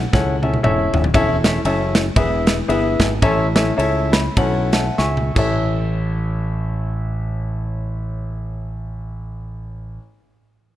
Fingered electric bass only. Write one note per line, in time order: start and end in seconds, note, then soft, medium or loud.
0.14 0.56 C#2 loud
0.64 0.89 E1 loud
0.93 1.11 D#1 medium
1.14 1.57 E1 loud
1.65 2.08 F#1 loud
2.16 2.61 E1 loud
2.69 2.96 G1 medium
3.00 3.19 G#1 medium
3.22 3.70 A1 loud
3.78 4.28 C#2 loud
4.37 4.89 B1 loud
4.99 5.31 C#2 loud
5.36 9.97 A1 loud